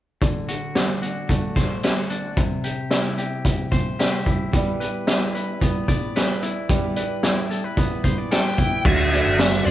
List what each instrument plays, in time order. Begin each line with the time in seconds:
0.22 clean electric guitar D3, kick, closed hi-hat
0.48 clean electric guitar F#4, closed hi-hat
0.75 clean electric guitar D4, snare, closed hi-hat
1.02 clean electric guitar F#4, closed hi-hat
1.29 clean electric guitar A3, kick, closed hi-hat
1.56 clean electric guitar C5, kick, snare, closed hi-hat
1.83 clean electric guitar E4, snare, closed hi-hat
1.97 clean electric guitar F#4
2.10 clean electric guitar D4, closed hi-hat
2.37 clean electric guitar C3, kick, closed hi-hat
2.64 clean electric guitar G4, closed hi-hat
2.91 clean electric guitar E4, snare, closed hi-hat
3.18 clean electric guitar G4, closed hi-hat
3.45 kick, closed hi-hat
3.72 clean electric guitar C5, kick, closed hi-hat
3.99 clean electric guitar G4, snare, closed hi-hat
4.26 clean electric guitar E4, kick, closed hi-hat
4.52 steel-string acoustic guitar G3 B3 E4, clean electric guitar G3, kick, closed hi-hat
4.56 steel-string acoustic guitar B4 D5
4.80 clean electric guitar B4, closed hi-hat
5.07 clean electric guitar E4, snare, closed hi-hat
5.35 clean electric guitar B4, closed hi-hat
5.60 steel-string acoustic guitar B3 E4 B4 D5, clean electric guitar B3, kick, closed hi-hat
5.88 clean electric guitar D5, kick, closed hi-hat
6.15 steel-string acoustic guitar B3 E4 B4 D5, clean electric guitar B4, snare, closed hi-hat
6.42 clean electric guitar E4, closed hi-hat
6.69 steel-string acoustic guitar G3 B3 E4 B4 D5, clean electric guitar G3, kick, closed hi-hat
6.96 steel-string acoustic guitar E4 B4 D5, clean electric guitar B4, closed hi-hat
7.23 clean electric guitar E4, snare, closed hi-hat
7.50 clean electric guitar A4, closed hi-hat
7.64 clean electric guitar B4
7.76 steel-string acoustic guitar B3 E4 B4 D5, clean electric guitar B3, kick, closed hi-hat
8.04 clean electric guitar C5, kick, closed hi-hat
8.18 clean electric guitar D5
8.30 steel-string acoustic guitar B3 E4 B4 D5, clean electric guitar A4, lead electric guitar G5, snare, closed hi-hat
8.45 clean electric guitar B4
8.58 clean electric guitar E4, kick, closed hi-hat
8.84 fingered electric bass D2, steel-string acoustic guitar D3 F#3 A3 D4 F#4 C5, clean electric guitar D3, string machine F#3 A3 C4 D4 F#4, lead electric guitar E5, kick, crash
9.11 steel-string acoustic guitar A3 D4 F#4 C5, clean electric guitar D4, hi-hat pedal, open hi-hat
9.26 fingered electric bass F#1
9.38 steel-string acoustic guitar A3 D4 F#4 C5, clean electric guitar F#4, snare, hi-hat pedal, open hi-hat
9.64 fingered electric bass F#2, steel-string acoustic guitar D4 F#4 C5, clean electric guitar C5, lead electric guitar D5, hi-hat pedal, open hi-hat